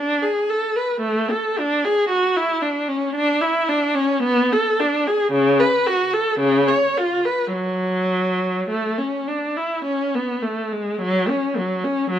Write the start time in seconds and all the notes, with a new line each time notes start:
Already playing: D4
0.22 G#4
0.50 A4
0.76 B4
1.01 A3
1.31 A4
1.59 D4
1.85 G#4
2.09 F#4
2.37 E4
2.62 D4
2.88 C#4
3.15 D4
3.41 E4
3.69 D4
3.95 C#4
4.23 B3
4.53 A4
4.80 D4
5.07 G#4
5.32 C#3
5.60 B4
5.86 F#4
6.13 A4
6.40 C#3
6.68 C#5
6.97 F4
7.25 B4
7.53 F#3
8.70 A3
8.98 C#4
9.28 D4
9.56 E4
9.85 C#4
10.15 B3
10.42 A3
10.72 G#3
11.02 F#3
11.29 C#4
11.57 F#3
11.84 C#4
12.10 F#3